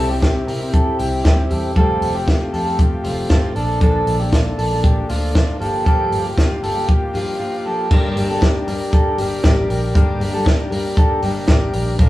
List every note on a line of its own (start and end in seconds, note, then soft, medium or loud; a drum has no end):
0.00 0.40 C2 medium
0.00 1.71 C4 medium
0.00 1.72 E4 medium
0.00 1.73 G4 medium
0.09 0.62 C4 soft
0.09 0.60 E4 soft
0.09 0.60 G4 medium
0.09 0.21 G4 medium
0.22 0.47 G4 medium
0.22 kick medium
0.22 snare loud
0.22 closed hi-hat medium
0.47 0.92 C3 medium
0.47 0.73 A#4 medium
0.47 open hi-hat medium
0.60 0.98 C4 soft
0.60 0.99 E4 medium
0.60 0.99 G4 medium
0.73 0.98 A4 medium
0.73 kick loud
0.73 closed hi-hat medium
0.99 1.21 C2 medium
0.99 1.23 G3 medium
0.99 1.23 C4 medium
0.99 1.24 E4 medium
0.99 1.23 G4 medium
0.99 1.25 G4 medium
0.99 open hi-hat medium
1.24 1.47 D2 medium
1.24 1.48 G3 medium
1.24 1.49 C4 medium
1.24 1.49 E4 medium
1.24 1.50 G4 medium
1.24 kick loud
1.24 snare loud
1.24 closed hi-hat medium
1.49 1.72 E2 medium
1.49 1.75 G3 medium
1.49 1.75 C4 medium
1.49 1.76 E4 medium
1.49 1.76 G4 medium
1.49 1.75 A4 medium
1.49 open hi-hat medium
1.75 1.98 F1 medium
1.75 2.14 F3 medium
1.75 2.15 G3 medium
1.75 3.52 A3 medium
1.75 2.15 C4 medium
1.75 3.52 F4 medium
1.75 2.14 F4 medium
1.75 3.53 G4 medium
1.75 2.12 A4 medium
1.75 2.13 A4 medium
1.75 kick medium
1.75 closed hi-hat medium
2.01 2.45 F1 medium
2.01 open hi-hat medium
2.14 2.66 C4 soft
2.14 2.66 F4 soft
2.14 2.28 G4 medium
2.14 2.64 A4 medium
2.28 2.54 F4 medium
2.28 kick loud
2.28 snare loud
2.28 closed hi-hat medium
2.53 2.97 F2 medium
2.53 2.78 A4 medium
2.53 open hi-hat medium
2.65 3.03 C4 soft
2.65 3.04 F4 medium
2.65 3.04 A4 medium
2.78 3.04 G4 medium
2.78 kick loud
2.78 closed hi-hat medium
3.03 3.26 F1 medium
3.03 3.28 G3 medium
3.03 3.29 C4 medium
3.03 3.29 F4 medium
3.03 3.30 F4 medium
3.03 3.30 A4 medium
3.03 open hi-hat medium
3.29 3.52 G1 medium
3.29 3.55 G3 medium
3.29 3.56 C4 medium
3.29 3.55 F4 medium
3.29 3.56 F4 medium
3.29 3.56 A4 medium
3.29 kick loud
3.29 snare loud
3.29 closed hi-hat medium
3.55 3.99 A#1 medium
3.55 3.80 F3 medium
3.55 5.56 A#3 medium
3.55 3.81 A#3 medium
3.55 5.57 D4 medium
3.55 3.81 D4 medium
3.55 3.79 A4 medium
3.55 5.57 A4 medium
3.55 3.82 A4 medium
3.55 open hi-hat medium
3.80 4.20 A#2 medium
3.80 4.20 D3 medium
3.80 4.20 F3 loud
3.80 4.20 A#3 medium
3.80 4.20 D4 medium
3.80 4.17 A4 loud
3.80 4.19 A4 medium
3.80 kick medium
3.80 closed hi-hat medium
4.07 4.50 A#1 medium
4.07 open hi-hat medium
4.20 4.72 F3 soft
4.20 4.72 A#3 medium
4.20 4.71 D4 medium
4.20 4.32 G4 medium
4.20 4.69 A4 medium
4.32 4.58 F4 medium
4.32 kick medium
4.32 snare loud
4.32 closed hi-hat medium
4.58 5.02 A#1 medium
4.58 4.83 A4 medium
4.58 open hi-hat medium
4.71 5.08 F3 medium
4.71 5.08 A#3 soft
4.71 5.09 D4 medium
4.71 5.09 A4 medium
4.83 5.09 G4 medium
4.83 kick loud
4.83 closed hi-hat medium
5.09 5.42 D2 medium
5.09 5.33 F3 medium
5.09 5.34 A#3 medium
5.09 5.34 D4 medium
5.09 5.33 F4 medium
5.09 5.35 A4 medium
5.09 open hi-hat medium
5.34 5.58 F3 medium
5.34 5.58 A#3 medium
5.34 5.59 D4 medium
5.34 5.60 F4 medium
5.34 5.61 A4 medium
5.34 kick loud
5.34 snare loud
5.34 closed hi-hat medium
5.59 6.04 G1 loud
5.59 5.84 F3 medium
5.59 5.84 A#3 medium
5.59 7.87 A#3 medium
5.59 5.85 D4 medium
5.59 7.87 F4 medium
5.59 5.85 G4 medium
5.59 7.88 G4 medium
5.59 5.85 A4 medium
5.59 open hi-hat medium
5.84 6.24 G2 medium
5.84 6.24 D3 medium
5.84 6.24 F3 medium
5.84 6.24 A#3 medium
5.84 6.24 D4 medium
5.84 6.23 G4 medium
5.84 6.25 A4 medium
5.84 kick loud
5.84 closed hi-hat medium
6.11 6.55 G1 medium
6.11 open hi-hat medium
6.24 6.76 F3 soft
6.24 6.76 A#3 medium
6.24 6.76 D4 medium
6.24 6.74 G4 medium
6.24 6.38 G4 medium
6.37 6.63 F4 medium
6.37 kick loud
6.37 snare loud
6.37 closed hi-hat medium
6.62 7.06 G1 medium
6.62 6.88 A4 medium
6.62 open hi-hat medium
6.75 7.12 F3 soft
6.75 7.13 A#3 medium
6.75 7.13 D4 medium
6.75 7.14 G4 medium
6.88 7.14 G4 medium
6.88 kick loud
6.88 closed hi-hat medium
7.13 7.36 G2 medium
7.13 7.37 F3 medium
7.13 7.38 A#3 medium
7.13 7.39 D4 medium
7.13 7.38 F4 medium
7.13 7.39 G4 medium
7.13 open hi-hat medium
7.38 7.64 F3 medium
7.38 7.65 A#3 medium
7.38 7.65 D4 medium
7.38 7.65 F4 medium
7.38 7.66 G4 medium
7.65 7.91 F3 medium
7.65 7.90 A#3 medium
7.65 7.90 D4 medium
7.65 7.91 G4 medium
7.65 7.91 A4 medium
7.90 8.13 G1 medium
7.90 8.16 G2 medium
7.90 8.16 D3 medium
7.90 8.15 G3 medium
7.90 8.16 A#3 medium
7.90 11.95 D4 medium
7.90 8.17 D4 medium
7.90 8.17 G4 medium
7.90 11.96 G4 medium
7.90 8.27 A#4 loud
7.90 11.97 A#4 medium
7.90 kick loud
7.90 crash medium
8.16 8.60 G1 medium
8.16 8.29 G3 medium
8.16 8.30 A#3 medium
8.16 8.29 D4 medium
8.16 8.28 G4 medium
8.16 open hi-hat medium
8.29 8.66 G3 soft
8.29 8.67 A#3 medium
8.29 8.68 D4 medium
8.29 8.68 G4 medium
8.29 8.42 A4 medium
8.42 8.67 G4 medium
8.42 kick medium
8.42 snare loud
8.42 clap medium
8.42 closed hi-hat medium
8.67 9.11 G2 medium
8.67 9.17 G3 medium
8.67 9.19 A#3 medium
8.67 9.20 D4 medium
8.67 9.19 G4 medium
8.67 8.92 A#4 medium
8.67 open hi-hat medium
8.92 9.18 A4 medium
8.92 kick loud
8.92 closed hi-hat medium
9.18 9.40 G1 medium
9.18 9.43 G3 medium
9.18 9.44 A#3 medium
9.18 9.45 D4 medium
9.18 9.43 G4 medium
9.18 9.45 G4 medium
9.18 open hi-hat medium
9.44 9.66 A1 medium
9.44 9.94 G3 medium
9.44 9.96 A#3 medium
9.44 9.96 D4 medium
9.44 9.69 G4 medium
9.44 9.95 G4 medium
9.44 kick loud
9.44 snare loud
9.44 clap medium
9.44 closed hi-hat medium
9.69 9.91 A#1 medium
9.69 9.94 A#4 medium
9.69 open hi-hat medium
9.95 10.17 G1 medium
9.95 10.21 G2 medium
9.95 10.21 D3 medium
9.95 10.18 G3 medium
9.95 10.19 A#3 medium
9.95 10.20 D4 loud
9.95 10.21 G4 medium
9.95 10.31 A#4 medium
9.95 kick loud
9.95 closed hi-hat medium
10.19 10.64 G1 medium
10.19 10.33 G3 medium
10.19 10.33 A#3 medium
10.19 10.33 D4 medium
10.19 10.32 G4 medium
10.19 open hi-hat medium
10.33 10.69 G3 soft
10.33 10.70 A#3 soft
10.33 10.71 D4 medium
10.33 10.72 G4 medium
10.33 10.46 A4 medium
10.46 10.71 G4 medium
10.46 kick loud
10.46 snare loud
10.46 clap medium
10.70 11.15 G2 medium
10.70 11.21 G3 medium
10.70 11.23 A#3 medium
10.70 11.24 D4 medium
10.70 11.23 G4 medium
10.70 10.96 A#4 medium
10.70 open hi-hat medium
10.97 11.23 A4 medium
10.97 kick loud
10.97 closed hi-hat medium
11.22 11.45 G1 medium
11.22 11.46 G3 medium
11.22 11.48 A#3 medium
11.22 11.49 D4 medium
11.22 11.47 G4 medium
11.22 11.49 G4 medium
11.22 open hi-hat medium
11.48 11.70 A1 loud
11.48 11.99 G3 medium
11.48 12.00 A#3 medium
11.48 12.00 D4 medium
11.48 11.73 G4 medium
11.48 12.00 G4 medium
11.48 kick loud
11.48 snare loud
11.48 clap medium
11.48 closed hi-hat medium
11.73 11.95 A#1 medium
11.73 11.98 A#4 medium
11.73 open hi-hat medium
11.99 12.09 A#1 medium
11.99 12.09 A#2 medium
11.99 12.09 D3 medium
11.99 12.09 F3 medium
11.99 12.09 A#3 medium
11.99 12.09 D4 medium
11.99 12.09 D4 loud
11.99 12.09 F4 medium
11.99 12.09 A#4 loud
11.99 12.09 A#4 medium
11.99 kick loud
11.99 closed hi-hat medium